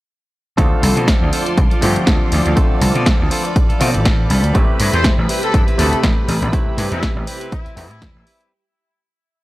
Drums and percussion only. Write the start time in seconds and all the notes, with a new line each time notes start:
0.58 kick, closed hi-hat
0.83 open hi-hat
0.97 closed hi-hat
1.08 kick, snare, closed hi-hat
1.33 open hi-hat
1.46 closed hi-hat
1.58 kick, closed hi-hat
1.71 closed hi-hat
1.82 open hi-hat
1.96 closed hi-hat
2.07 kick, snare, closed hi-hat
2.32 open hi-hat
2.46 closed hi-hat
2.57 kick, closed hi-hat
2.81 open hi-hat
2.95 closed hi-hat
3.06 kick, snare, closed hi-hat
3.31 open hi-hat
3.45 closed hi-hat
3.56 kick, closed hi-hat
3.70 closed hi-hat
3.81 open hi-hat
3.94 closed hi-hat
4.05 kick, snare, closed hi-hat
4.30 open hi-hat
4.44 closed hi-hat
4.55 kick, closed hi-hat
4.80 open hi-hat
4.94 closed hi-hat
5.04 kick, snare, closed hi-hat
5.29 open hi-hat
5.43 closed hi-hat
5.54 kick, closed hi-hat
5.68 closed hi-hat
5.79 open hi-hat
5.93 closed hi-hat
6.03 kick, snare, closed hi-hat
6.29 open hi-hat
6.42 closed hi-hat
6.53 kick, closed hi-hat
6.78 open hi-hat
6.92 closed hi-hat
7.03 kick, snare, closed hi-hat
7.27 open hi-hat
7.41 closed hi-hat
7.52 kick, closed hi-hat
7.66 closed hi-hat
7.77 open hi-hat
7.91 closed hi-hat
8.02 kick, snare, closed hi-hat
8.27 open hi-hat
8.41 closed hi-hat